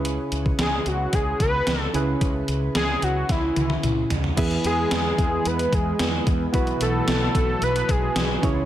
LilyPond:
<<
  \new Staff \with { instrumentName = "Analog synth lead" } { \time 4/4 \key cis \minor \tempo 4 = 111 r4 gis'8 fis'8 gis'8 b'4 r8 | r4 gis'8 fis'8 e'4. r8 | r8 gis'4. b'8 gis'4 r8 | r8 a'4. b'8 gis'4 r8 | }
  \new Staff \with { instrumentName = "Synth keys" } { \time 4/4 \key cis \minor << { <cis' e' gis' b'>2.~ <cis' e' gis' b'>8 <cis' e' gis' b'>8~ | <cis' e' gis' b'>2.~ <cis' e' gis' b'>8 r8 | <b e' gis' b'>1 | <b e' fis' b'>2.~ <b e' fis' b'>8 <cis' e' gis' cis''>8 | } \\ { cis4 r2 r8 cis8~ | cis4 r2. | e4. r2 r8 | b,4. r2 cis8 | } >> }
  \new Staff \with { instrumentName = "String machine" } { \clef bass \time 4/4 \key cis \minor << { r1 | r1 | <e b>1~ | <e b>2.~ <e b>8 <e cis'>8 | } \\ { r1 | r1 | gis1 | fis2.~ fis8 gis8 | } >> }
  \new Staff \with { instrumentName = "Fretless electric bass" } { \clef bass \time 4/4 \key cis \minor cis,8 cis,8 cis,8 cis,8 cis,8 cis,8 cis,8 cis,8 | cis,8 cis,8 cis,8 cis,8 cis,8 cis,8 cis,8 cis,8 | e,8 e,8 e,8 e,8 e,8 e,8 e,8 e,8 | b,,8 b,,8 b,,8 b,,8 b,,8 b,,8 b,,8 cis,8 | }
  \new DrumStaff \with { instrumentName = "Drums" } \drummode { \time 4/4 hh8 hh16 bd16 <hh sn>8 hh8 <hh bd>8 <hh bd>8 <hh sn>8 hh8 | <hh bd>8 hh8 <hh sn>8 hh8 <hh bd sn>8 <hh tommh>16 tommh16 <hh toml>8 <hh tomfh>16 tomfh16 | <cymc hh bd>16 hh16 hh8 <hh sn>8 <hh bd>8 hh16 hh16 <hh bd>8 <hh sn>8 <hh bd>8 | <hh bd>16 hh16 hh8 <hh sn>8 <hh bd>8 hh16 hh16 <hh bd>8 <hh sn>8 <hh bd>8 | }
>>